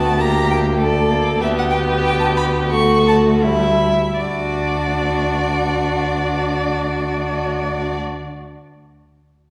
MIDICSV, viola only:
0, 0, Header, 1, 2, 480
1, 0, Start_track
1, 0, Key_signature, 2, "major"
1, 0, Tempo, 620476
1, 148, Time_signature, 2, 2, 24, 8
1, 1588, Tempo, 691244
1, 2548, Tempo, 760456
1, 6377, End_track
2, 0, Start_track
2, 0, Title_t, "Viola"
2, 0, Program_c, 0, 41
2, 0, Note_on_c, 0, 59, 34
2, 149, Note_off_c, 0, 59, 0
2, 152, Note_on_c, 0, 58, 38
2, 615, Note_on_c, 0, 57, 39
2, 627, Note_off_c, 0, 58, 0
2, 854, Note_on_c, 0, 58, 39
2, 866, Note_off_c, 0, 57, 0
2, 1090, Note_on_c, 0, 59, 43
2, 1101, Note_off_c, 0, 58, 0
2, 2054, Note_off_c, 0, 59, 0
2, 2062, Note_on_c, 0, 57, 48
2, 2558, Note_on_c, 0, 55, 39
2, 2568, Note_off_c, 0, 57, 0
2, 2888, Note_off_c, 0, 55, 0
2, 3040, Note_on_c, 0, 62, 34
2, 5437, Note_off_c, 0, 62, 0
2, 6377, End_track
0, 0, End_of_file